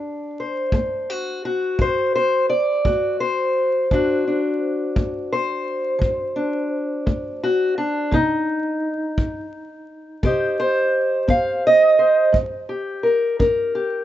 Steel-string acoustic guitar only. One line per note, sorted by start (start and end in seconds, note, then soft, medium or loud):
0.00 0.30 D3 medium
0.00 1.10 D4 soft
0.40 1.81 C5 soft
0.74 1.36 A3 medium
1.10 1.44 F#4 medium
1.45 2.50 F#4 medium
1.78 2.42 D3 medium
1.78 2.14 C5 medium
2.15 2.49 C5 medium
2.50 3.20 D5 medium
2.85 3.48 A3 medium
2.85 3.86 F#4 soft
3.20 5.31 C5 medium
3.91 4.54 D3 medium
3.91 4.26 D4 soft
3.91 7.42 F#4 soft
4.28 6.35 D4 soft
4.96 5.59 A3 medium
5.33 8.13 C5 medium
5.99 6.63 D3 medium
6.36 7.77 D4 soft
7.06 7.70 A3 medium
7.43 7.77 F#4 medium
7.78 8.12 D4 medium
8.11 8.75 C3 medium
8.11 10.94 D#4 medium
10.23 10.86 C3 medium
10.23 12.69 G4 soft
10.23 10.58 C5 soft
10.23 11.29 D#5 soft
10.60 11.98 C5 medium
11.28 11.91 C4 medium
11.28 11.64 F5 medium
11.67 12.35 D#5 medium
11.99 12.30 C5 soft
12.32 12.96 G2 medium
12.69 13.74 G4 soft
13.03 13.39 A#4 soft
13.39 14.02 D4 medium
13.39 14.04 A#4 soft
13.75 14.04 G4 soft